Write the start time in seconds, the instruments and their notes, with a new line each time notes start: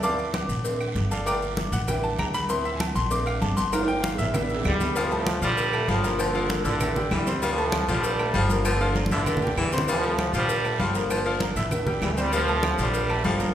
Already playing: upright bass D2
0.03 grand piano F3 C4 E4 D5 F5 A5 D6, cowbell, high conga, low agogo, long guiro, maracas
0.18 high conga, low agogo, maracas
0.34 cowbell, high conga, low timbale, low agogo, short guiro, claves, maracas
0.49 upright bass A#1, high conga, short guiro, maracas
0.64 grand piano A3 C4 D4, cowbell, high conga, low agogo, long guiro, maracas
0.81 high conga, low agogo, claves, maracas
0.95 upright bass G1, cowbell, high conga, low timbale, short guiro, maracas
1.11 grand piano A4 D5 F5 A5, low agogo, short guiro, maracas
1.26 grand piano A3 A#3 F4 D5 G5 A#5 D6, cowbell, high conga, low agogo, long guiro, claves, maracas
1.42 high conga, maracas
1.57 cowbell, high conga, low timbale, low agogo, short guiro, maracas
1.72 upright bass A1, grand piano F#5, cowbell, high conga, low agogo, short guiro, maracas
1.88 grand piano G3 D4 E4 G5, cowbell, high conga, low conga, low agogo, long guiro, claves, maracas
2.03 grand piano A5, high conga, maracas
2.18 upright bass D2, grand piano A#5, cowbell, high conga, low timbale, low agogo, short guiro, claves, maracas
2.34 grand piano B5, cowbell, high conga, low agogo, short guiro, maracas
2.49 grand piano F3 C4 E4 C6, cowbell, high conga, low agogo, long guiro, maracas
2.65 grand piano E5, high conga, low agogo, maracas
2.76 grand piano G#5
2.80 grand piano A5, cowbell, high conga, low timbale, low agogo, short guiro, claves, maracas
2.95 upright bass A#1, grand piano C6, high conga, short guiro, maracas
3.10 grand piano A3 C4 D4 D6, cowbell, high conga, low agogo, long guiro, maracas
3.26 grand piano F5, high conga, low agogo, claves, maracas
3.41 upright bass G1, grand piano A5, cowbell, high conga, low timbale, short guiro, maracas
3.57 grand piano C6, high conga, low agogo, short guiro, maracas
3.72 grand piano A3 A#3 F4 A#5, cowbell, high conga, high timbale, low agogo, long guiro, claves, maracas
3.83 high timbale
3.88 grand piano G5, high conga, maracas
4.03 grand piano F5, cowbell, high conga, low agogo, short guiro, maracas
4.14 low timbale
4.18 upright bass A1, grand piano E5, cowbell, high conga, low agogo, short guiro, maracas
4.24 low timbale
4.34 grand piano G3 D4 E4, cowbell, high conga, low conga, low timbale, low agogo, long guiro, claves, maracas
4.49 high conga, maracas
4.54 low timbale
4.65 upright bass D2, trombone section D3 E3 G3, cowbell, high conga, low timbale, low agogo, short guiro, claves, maracas
4.80 cowbell, low agogo, short guiro, maracas
4.86 low timbale
4.96 trombone section A2 C3 F3, grand piano F3 F4 F5, baritone saxophone G3, cowbell, high conga, low agogo, long guiro, maracas
5.11 grand piano A3 A4 A5, high conga, low agogo, maracas
5.27 cowbell, high conga, low timbale, low agogo, short guiro, claves, maracas
5.41 upright bass A#1, trombone section D3 G3, grand piano F3 F4 F5, baritone saxophone F3, high conga, short guiro, maracas
5.57 cowbell, high conga, low agogo, maracas
5.73 grand piano A3 A4 A5, high conga, low agogo, claves, maracas
5.88 upright bass G1, trombone section A2 D3 F3, grand piano F3 F4 F5, baritone saxophone G3, cowbell, high conga, low timbale, short guiro, maracas
6.03 grand piano A#3 A#4 A#5, low agogo, short guiro, maracas
6.19 trombone section F2 A#2 D3, baritone saxophone F3, cowbell, high conga, low agogo, claves, maracas
6.35 grand piano F3 F4 F5, high conga, maracas
6.49 grand piano A#3 A#4 A#5, cowbell, high conga, low timbale, low agogo, short guiro, maracas
6.64 upright bass A1, trombone section G2 D3, baritone saxophone D3, grand piano E4 E5 E6, cowbell, high conga, low agogo, short guiro, maracas
6.80 cowbell, high conga, low conga, low agogo, long guiro, claves, maracas
6.96 grand piano G3 G4 G5, high conga, low conga, maracas
7.11 upright bass D2, trombone section D3 E3 G3, baritone saxophone E3, cowbell, high conga, low timbale, low agogo, short guiro, claves, maracas
7.27 grand piano C4 C5 C6, cowbell, low agogo, short guiro, maracas
7.42 trombone section A2 C3 F3, grand piano F3 F4 F5, baritone saxophone G3, cowbell, high conga, low agogo, long guiro, maracas
7.57 grand piano A3 A4 A5, high conga, low agogo, maracas
7.72 cowbell, high conga, low timbale, low agogo, short guiro, claves, maracas
7.88 upright bass A#1, trombone section D3 G3, baritone saxophone F3, grand piano F3 F4 F5, high conga, short guiro, maracas
8.03 cowbell, high conga, low agogo, long guiro, maracas
8.19 grand piano A3 A4 A5, high conga, low agogo, claves, maracas
8.34 upright bass G1, trombone section A2 D3 F3, grand piano F3 F4 F5, baritone saxophone G3, cowbell, high conga, low timbale, short guiro, maracas
8.49 grand piano A#3 A#4 A#5, high conga, low agogo, short guiro, maracas
8.65 trombone section F2 A#2 D3, baritone saxophone F3, cowbell, high conga, low agogo, long guiro, claves, maracas
8.80 grand piano F3 F4 F5, high conga, maracas
8.95 grand piano A#3 A#4 A#5, cowbell, high conga, low timbale, low agogo, short guiro, maracas
9.06 high conga
9.11 upright bass A1, trombone section G2 D3, baritone saxophone D3, grand piano E4 E5 E6, cowbell, low agogo, short guiro, maracas
9.26 cowbell, low conga, low agogo, long guiro, claves, maracas
9.37 low conga
9.42 grand piano G3 G4 G5, maracas
9.47 low conga
9.57 upright bass D2, trombone section D3 E3 G3, baritone saxophone E3, cowbell, low timbale, low agogo, short guiro, claves, maracas
9.72 grand piano C4 C5 C6, cowbell, low agogo, short guiro, maracas
9.78 low conga
9.88 trombone section A2 C3 F3, grand piano F3 F4 F5, baritone saxophone G3, cowbell, high conga, low agogo, long guiro, maracas
10.03 grand piano A3 A4 A5, high conga, low agogo, maracas
10.18 cowbell, high conga, low timbale, low agogo, short guiro, claves, maracas
10.33 upright bass A#1, trombone section D3 G3, grand piano F3 F4 F5, baritone saxophone F3, high conga, short guiro, maracas
10.49 cowbell, high conga, low agogo, long guiro, maracas
10.64 grand piano A3 A4 A5, high conga, low agogo, claves, maracas
10.79 upright bass G1, trombone section A2 D3 F3, grand piano F3 F4 F5, baritone saxophone G3, cowbell, high conga, low timbale, short guiro, maracas
10.95 grand piano A#3 A#4 A#5, low agogo, short guiro, maracas
11.10 trombone section F2 A#2 D3, baritone saxophone F3, cowbell, high conga, low agogo, long guiro, claves, maracas
11.26 grand piano F3 F4 F5, high conga, maracas
11.40 grand piano A#3 A#4 A#5, cowbell, high conga, low timbale, low agogo, short guiro, maracas
11.56 upright bass A1, baritone saxophone D3, grand piano E4 E5 E6, cowbell, high conga, low agogo, short guiro, maracas
11.71 cowbell, high conga, low conga, low agogo, long guiro, claves, maracas
11.87 grand piano G3 G4 G5, high conga, low conga, maracas
12.02 upright bass D2, baritone saxophone E3, trombone section G3, cowbell, high conga, low timbale, low agogo, short guiro, claves, maracas
12.10 trombone section A3
12.17 trombone section G3, grand piano C4 C5 C6, cowbell, low agogo, short guiro, maracas
12.32 trombone section A2 C3 F3, grand piano F3 F4 F5, baritone saxophone G3, cowbell, high conga, low agogo, maracas
12.48 grand piano A3 A4 A5, high conga, low agogo, maracas
12.63 cowbell, high conga, low timbale, low agogo, short guiro, claves, maracas
12.78 upright bass A#1, trombone section D3 G3, baritone saxophone F3, grand piano F3 F4 F5, high conga, short guiro, maracas
12.94 cowbell, high conga, low agogo, long guiro, maracas
13.09 grand piano A3 A4 A5, high conga, low agogo, claves, maracas
13.24 upright bass G1, trombone section A2 D3 F3, grand piano F3 F4 F5, baritone saxophone G3, cowbell, high conga, low timbale, short guiro, maracas
13.40 grand piano A#3 A#4 A#5, high conga, low agogo, short guiro, maracas